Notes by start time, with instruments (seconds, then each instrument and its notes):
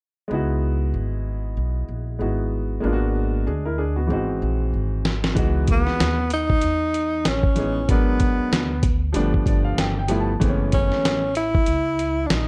0.28 upright bass C#2, grand piano G#3 B3 D#4
0.33 grand piano E4 F#4
0.94 upright bass G#1
1.57 upright bass B1
1.89 upright bass A#1
2.19 upright bass G#1, grand piano G#3 B3 D#4 E4 F#4
2.80 upright bass G#1, grand piano G#3 A#3 B3
2.85 grand piano D4 F4
2.93 grand piano F#4
3.47 upright bass D2, grand piano D4 G#4
3.65 grand piano E4 A#4
3.78 grand piano D4 G#4
3.96 grand piano B3 F#4
4.07 upright bass G#1, grand piano E3 G#3 C4
4.12 grand piano D#4 F#4
4.42 upright bass A#1
4.74 upright bass G#1
5.05 snare
5.24 snare
5.35 upright bass C#2, grand piano E3 G#3 B3 D#4 F#4, kick, closed hi-hat
5.67 tenor saxophone B3, kick, closed hi-hat
5.87 snare
6.00 upright bass D#2, snare, closed hi-hat
6.30 tenor saxophone D#4, closed hi-hat
6.50 kick
6.61 upright bass E2, closed hi-hat
6.94 closed hi-hat
7.25 upright bass A1, tenor saxophone C#4, snare, closed hi-hat
7.43 kick
7.55 grand piano E3 G#3 B3 D#4 G#4, closed hi-hat
7.88 upright bass G#1, grand piano F#3 G#3 B3 D4 A#4, tenor saxophone B3, kick, closed hi-hat
8.20 kick, closed hi-hat
8.39 muted upright bass stroke
8.52 upright bass D2, snare, closed hi-hat
8.83 kick, closed hi-hat
9.13 upright bass G1, grand piano F3 G3 A3 B3 D4, closed hi-hat
9.34 kick
9.46 grand piano D5, kick, closed hi-hat
9.64 grand piano F5
9.78 upright bass G1, grand piano G5, snare, closed hi-hat
9.99 grand piano G5
10.08 grand piano F3 G3 A3 B3 E4, closed hi-hat
10.20 grand piano A5
10.40 upright bass F#1, grand piano E3 G#3 A3 B3 C4, kick, closed hi-hat
10.49 grand piano C#4
10.72 tenor saxophone C#4, kick, closed hi-hat
10.92 muted upright bass stroke, snare
11.04 upright bass A1, snare, closed hi-hat
11.35 tenor saxophone E4, closed hi-hat
11.55 kick
11.66 upright bass C#2, closed hi-hat
11.99 closed hi-hat
12.26 tenor saxophone D4, snare
12.31 upright bass A#1, tenor saxophone D#4, closed hi-hat